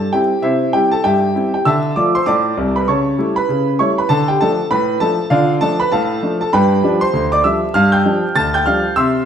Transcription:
Already playing: A4
0.13 G3 C4 E4 G4 G5
0.42 C3 E4 C5 E5
0.73 G3 C4 E4 G4 G5
0.92 A4 A5
1.04 G2 G4 E5 G5
1.35 G3 C4 E4
1.54 G4 G5
1.65 D3 E5 A5 E6
1.96 F3 A3 F4 D5 D6
2.15 C5 C6
2.26 A2 D5 A5 D6
2.58 C2 C3
2.76 B4 B5
2.88 C#3 C#5 A5 C#6
3.18 G3 A3 E4
3.36 B4 B5
3.49 C#3
3.79 G3 A3 E4 C#5 C#6
3.98 B4 B5
4.09 D3 A4 A5
4.28 G4 G5
4.41 F3 A3 D4 A4 A5
4.71 A2 B4 B5
5.00 F3 A3 D4 A4 A5
5.30 D3 F4 D5 F5
5.61 F3 A3 D4 A4 A5
5.80 B4 B5
5.92 A2 A4 F5 A5
6.22 F3 A3 D4
6.41 A4 A5
6.53 G2 B4 G5 B5
6.84 F3 G3 D4
7.01 C5 C6
7.13 D2
7.32 D5 D6
7.44 F3 G3 D4 E5 E6
7.74 G2 F5 F6
7.92 G5 G6
8.05 F3 G3 D4
8.36 D2 A5 A6
8.54 G5 G6
8.66 F3 G3 D4 F5 F6
8.96 C3 E5 C6 E6

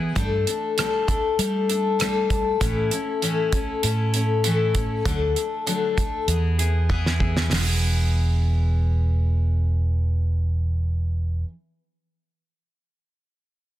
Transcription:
Already playing: E3 B3 E4 G#4
0.15 G2 G3 A3 D4 A4, kick, closed hi-hat
0.47 A3 D4 A4, closed hi-hat
0.78 G3 A3 D4 A4, cross-stick, closed hi-hat
1.07 A3 D4 A4, kick, closed hi-hat
1.39 G3 A3 D4 A4, closed hi-hat
1.69 A3 D4 A4, closed hi-hat
1.99 G3 A3 D4 A4, cross-stick, closed hi-hat
2.30 A3 D4 A4, kick, closed hi-hat
2.60 A2 E3 A3 C#4 E4 A4, kick, closed hi-hat
2.91 A3 C#4 E4 A4, closed hi-hat
3.22 A2 E3 A3 C#4 E4 A4, closed hi-hat
3.53 A3 C#4 E4 A4, kick, closed hi-hat
3.83 A2 A3 C#4 E4 A4, closed hi-hat
4.14 A3 C#4 E4 A4, closed hi-hat
4.44 A2 E3 A3 C#4 E4 A4, closed hi-hat
4.75 A3 C#4 E4 A4, kick, closed hi-hat
5.05 D2 D3 F#3 A3 D4 A4, kick, closed hi-hat
5.36 A3 D4 A4, closed hi-hat
5.66 D3 F#3 A3 D4 A4, closed hi-hat
5.97 A3 D4 A4, kick, closed hi-hat
6.28 E2 E3 B3 E4 G#4, closed hi-hat
6.58 B3 E4 G#4, closed hi-hat
6.89 E3 B3 E4 G#4, kick
7.06 snare
7.20 B3 E4 G#4, kick
7.37 snare
7.46 E1 E3
7.51 B3, snare, open hi-hat
7.56 E4
7.60 G#4

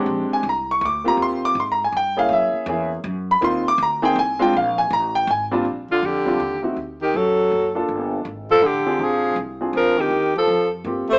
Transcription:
Already playing: G#3 C4 D4 G4
0.06 A#1
0.29 muted upright bass stroke
0.33 G#5
0.43 C2
0.49 A#5
0.71 C#6
0.81 D2 C#6
0.85 D6
1.04 A#3 C4 F4 G4 A#5
1.17 D#2
1.22 C6
1.45 D6
1.55 G#2
1.60 C6
1.72 A#5
1.84 G#5
1.92 G2
1.97 G5
2.17 A#3 C#4 E4 G#4 F5
2.29 F#2
2.33 E5
2.53 muted upright bass stroke
2.66 E2 A#3 C#4 E4 G#4
3.04 F#2
3.31 B5
3.41 D#2 A#3 C4 D#4 F4 C6
3.68 D6
3.78 D2
3.83 A#5
4.02 A#3 C4 D#4 G#4 G5
4.15 C2 G#5
4.39 G#3 C4 D4 F4 G5
4.53 A#1 F5
4.78 G#5
4.91 A1 A#5
5.15 G5
5.27 G#1 G#5
5.51 A#2 G3 C4 D4 F4
5.65 A#1
5.89 D3 F4, muted upright bass stroke
6.03 F2 D3 G4
6.25 G3 C4 D4 F4
6.40 D#2
6.62 A3 C4 D#4 F#4
6.77 D2
7.02 D#3 G4
7.14 F#2 F#3 A4
7.51 F#1
7.75 A#3 D4 F4 A4
7.88 G1
8.25 G#1
8.51 F3 A4
8.62 A1 D3
8.67 G4
8.85 C4 D4 F4 G#4, muted upright bass stroke
8.99 A#1 F3
9.04 G#4
9.36 C2
9.61 C4 D4 F4 G#4
9.73 D2 F3 A#4
9.99 D#3 G4
10.10 D#2
10.36 F3 A4
10.47 F2
10.84 G2 A#3 C4 F4 G4
11.09 A3 C5, muted upright bass stroke

